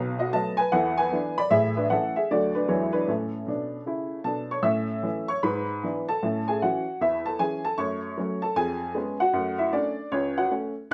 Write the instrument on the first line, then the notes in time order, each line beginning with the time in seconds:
upright piano
Already playing: B1 B2
0.19 F#4 D#5
0.33 F#3 A3 B3 D#5 A5
0.57 B4 G#5
0.72 E2 E3 A4 F#5
0.98 B4 G#5
1.12 E3 B3 D4
1.38 D5 B5
1.50 A1 A2 G#4 E5
1.77 D4 B4
1.90 E3 A3 C#4 A4 F#5
2.16 G#4 E5
2.31 D2 D3 F#3 A3 D4 F#4 D5
2.55 D4 B4
2.68 E2 E3 F#3 G#3 D4 E4 C#5
2.93 D4 B4
3.08 A2 C#4 A4
3.47 B2 D4
3.86 C#3 E4
4.24 B2 D4 A4 A5
4.51 C#5 C#6
4.62 A2 C#4 E5 E6
5.03 E3 A3 C#4
5.28 C#5 C#6
5.43 G#2 B4 B5
5.83 E3 B3 D4
6.08 A4 A5
6.23 A2 C#4
6.48 G#4 G#5
6.62 E3 C#4 F#4 F#5
7.01 E2 E4 E5
7.26 A4 A5
7.39 E3 C#4 G#4 G#5
7.65 A4 A5
7.78 F#2 A3 C#5 C#6
8.17 F#3 A3 C#4
8.42 A4 A5
8.56 F2 G#4 G#5
8.95 G#3 B3 C#4
9.20 F#4 F#5
9.33 F#2 A3
9.58 E4 E5
9.73 A3 C#4 D4 D5
10.12 C#2 C#4 C#5
10.38 F#4 F#5
10.51 A3 C#4